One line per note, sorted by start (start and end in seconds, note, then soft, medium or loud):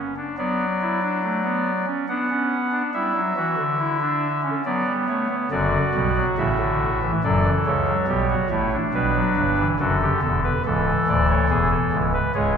0.00 0.14 C#4 medium
0.16 0.35 D4 medium
0.38 1.85 F#3 medium
0.38 0.65 B3 medium
0.38 1.85 D5 medium
0.81 1.00 E4 medium
1.02 1.21 D4 medium
1.23 1.42 A3 medium
1.44 1.71 B3 medium
1.87 2.06 C#4 medium
2.09 2.82 B3 medium
2.09 2.27 D4 medium
2.09 2.82 F#5 medium
2.31 2.57 C#4 medium
2.72 2.91 D4 medium
2.93 3.12 G3 medium
2.93 3.20 E4 medium
2.93 4.41 E5 medium
3.15 3.33 F#3 medium
3.36 3.55 E3 medium
3.36 3.63 F#4 medium
3.57 4.50 D3 medium
3.79 3.98 E4 medium
4.01 4.27 D4 medium
4.43 4.62 C#4 medium
4.65 4.84 F#3 medium
4.65 5.28 B3 medium
4.65 4.92 D5 medium
4.86 5.05 G3 medium
5.08 5.27 A3 medium
5.08 5.35 C#5 medium
5.30 5.48 B3 medium
5.51 5.78 F#1 medium
5.51 5.78 F#2 medium
5.51 5.78 D3 medium
5.51 6.99 F#4 medium
5.51 6.25 D5 medium
5.94 6.21 B1 medium
5.94 6.21 B2 medium
5.94 6.13 G3 medium
6.16 6.35 F#3 medium
6.38 7.12 A1 medium
6.38 7.12 A2 medium
6.38 6.56 C#3 medium
6.38 7.12 E5 medium
6.59 6.86 D3 medium
7.02 7.20 E3 medium
7.24 7.50 F#1 medium
7.24 7.50 F#2 medium
7.24 7.42 F#3 medium
7.24 7.97 A4 medium
7.24 7.50 D5 medium
7.45 7.71 E3 medium
7.66 7.93 C#2 medium
7.66 7.93 C#3 medium
7.66 8.76 C#5 medium
7.87 8.06 F#3 medium
8.07 8.34 B1 medium
8.07 8.35 B2 medium
8.07 8.35 G3 medium
8.07 8.27 G4 medium
8.30 8.48 F#4 medium
8.50 8.77 A1 medium
8.50 8.77 A2 medium
8.50 8.77 A3 medium
8.50 8.69 E4 medium
8.72 9.65 D4 medium
8.94 9.20 B1 medium
8.94 9.21 B2 medium
8.94 9.12 G3 medium
8.94 9.68 B4 medium
9.15 9.42 F#3 medium
9.36 9.63 G1 medium
9.36 9.63 G2 medium
9.57 9.76 E3 medium
9.80 10.06 F#1 medium
9.80 10.06 F#2 medium
9.80 10.53 D3 medium
9.80 9.98 F#4 medium
9.80 10.20 A4 medium
10.01 10.20 G4 medium
10.22 10.48 E1 medium
10.22 10.48 E2 medium
10.22 10.40 A4 medium
10.43 10.62 B4 medium
10.65 10.92 C#1 medium
10.65 10.91 C#2 medium
10.65 12.11 E3 medium
10.65 11.69 A4 loud
11.08 11.34 D1 medium
11.08 11.34 D2 medium
11.08 11.26 D5 loud
11.29 11.47 C#5 loud
11.49 11.76 E1 medium
11.49 11.76 E2 medium
11.49 11.68 G#4 medium
11.71 11.97 A4 medium
11.92 12.19 C#1 medium
11.92 12.19 C#2 medium
12.13 12.32 B4 medium
12.34 12.57 C#1 medium
12.34 12.57 C#2 medium
12.34 12.57 G#3 medium
12.34 12.57 G#4 medium
12.34 12.53 C#5 medium